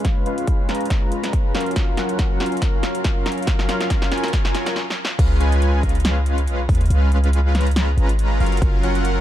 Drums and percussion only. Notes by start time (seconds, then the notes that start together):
0.05 kick, snare, closed hi-hat
0.26 closed hi-hat
0.38 closed hi-hat
0.47 kick, closed hi-hat
0.69 snare, closed hi-hat
0.75 closed hi-hat
0.81 closed hi-hat
0.85 closed hi-hat
0.90 kick, snare, closed hi-hat
1.12 closed hi-hat
1.24 snare, closed hi-hat
1.33 kick, closed hi-hat
1.55 snare, closed hi-hat
1.61 closed hi-hat
1.66 closed hi-hat
1.71 closed hi-hat
1.76 kick, snare, closed hi-hat
1.97 snare, closed hi-hat
2.09 closed hi-hat
2.19 kick, snare, closed hi-hat
2.40 snare, closed hi-hat
2.46 closed hi-hat
2.52 closed hi-hat
2.57 closed hi-hat
2.62 kick, snare, closed hi-hat
2.83 snare, closed hi-hat
2.95 closed hi-hat
3.04 kick, snare, closed hi-hat
3.26 snare, closed hi-hat
3.32 closed hi-hat
3.38 closed hi-hat
3.42 closed hi-hat
3.47 kick, snare, closed hi-hat
3.59 snare
3.69 snare, closed hi-hat
3.81 snare, closed hi-hat
3.90 kick, snare, closed hi-hat
4.02 snare
4.12 snare, closed hi-hat
4.18 closed hi-hat
4.23 snare, closed hi-hat
4.28 closed hi-hat
4.33 kick, snare, closed hi-hat
4.45 snare
4.55 snare, closed hi-hat
4.66 snare, closed hi-hat
4.76 snare
4.90 snare
5.05 snare
5.19 kick, closed hi-hat, crash
5.41 closed hi-hat
5.52 closed hi-hat
5.62 closed hi-hat
5.83 kick, closed hi-hat
5.89 closed hi-hat
5.95 closed hi-hat
6.00 closed hi-hat
6.05 snare, closed hi-hat
6.26 closed hi-hat
6.38 closed hi-hat
6.48 closed hi-hat
6.69 kick, open hi-hat
6.75 closed hi-hat
6.81 closed hi-hat
6.86 closed hi-hat
6.90 closed hi-hat
7.12 closed hi-hat
7.24 closed hi-hat
7.33 closed hi-hat
7.55 snare, closed hi-hat
7.61 closed hi-hat
7.67 closed hi-hat
7.71 closed hi-hat
7.76 snare, closed hi-hat
7.98 closed hi-hat
8.09 closed hi-hat
8.19 closed hi-hat
8.40 open hi-hat
8.46 closed hi-hat
8.52 closed hi-hat
8.57 closed hi-hat
8.62 kick, closed hi-hat
8.83 closed hi-hat
8.95 closed hi-hat
9.05 closed hi-hat